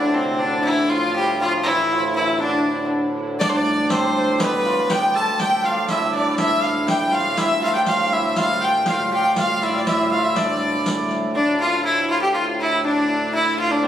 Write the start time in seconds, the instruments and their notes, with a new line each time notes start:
Already playing: harmonium D2 A2, hammered dulcimer D3, fiddle D4
0.14 hammered dulcimer C3, fiddle C4
0.39 fiddle D4
0.43 hammered dulcimer D3
0.64 hammered dulcimer E3, fiddle E4
0.90 fiddle F4
0.94 hammered dulcimer F3
1.16 hammered dulcimer G3, fiddle G4
1.40 hammered dulcimer F3, fiddle F4
1.63 fiddle E4
1.68 hammered dulcimer E3
1.92 hammered dulcimer F3
2.16 hammered dulcimer E3, fiddle E4
2.39 hammered dulcimer D3, fiddle D4
3.39 harmonium D2 A2, hammered dulcimer D4, fiddle D5, riq
3.49 fiddle C5 D5
3.53 hammered dulcimer D4, fiddle D5
3.65 riq
3.90 hammered dulcimer C4, fiddle C5, riq
4.17 fiddle C5
4.40 hammered dulcimer B3, fiddle B4, riq
4.65 hammered dulcimer F4, riq
4.90 hammered dulcimer G4, fiddle G5, riq
5.15 hammered dulcimer A4, fiddle A5
5.34 fiddle A5
5.39 hammered dulcimer G4, fiddle G5, riq
5.64 hammered dulcimer F4, fiddle F5, riq
5.88 hammered dulcimer E4, fiddle E5, riq
6.12 hammered dulcimer D4, fiddle D5
6.37 hammered dulcimer E4, fiddle E5, riq
6.62 fiddle F5, riq
6.87 hammered dulcimer G4, fiddle G5, riq
7.12 hammered dulcimer F4, fiddle F5, riq
7.36 harmonium D2 A2, hammered dulcimer E4, fiddle E5, riq
7.61 hammered dulcimer F4, fiddle F5, riq
7.73 hammered dulcimer G4, fiddle G5
7.86 hammered dulcimer F4, fiddle F5, riq
8.12 hammered dulcimer E4, fiddle E5
8.36 hammered dulcimer F4, fiddle F5, riq
8.61 fiddle G5, riq
8.86 hammered dulcimer F4, fiddle F5, riq
8.93 fiddle G5
9.00 fiddle F5
9.11 hammered dulcimer G4, fiddle G5
9.36 hammered dulcimer F4, fiddle F5, riq
9.62 hammered dulcimer E4, fiddle D5 E5, riq
9.69 hammered dulcimer E4, fiddle E5
9.75 fiddle D5
9.87 hammered dulcimer E4, fiddle E5, riq
10.11 hammered dulcimer F4, fiddle F5
10.23 hammered dulcimer E4, fiddle E5
10.36 hammered dulcimer D4, fiddle D5, riq
10.86 riq
11.11 riq
11.35 harmonium D2 A2, fiddle D4
11.60 fiddle F4
11.85 fiddle E4
12.10 fiddle F4
12.22 fiddle G4
12.34 fiddle F4
12.60 fiddle E4
12.85 fiddle D4
13.33 fiddle E4
13.58 fiddle F4
13.70 fiddle D4
13.83 fiddle C4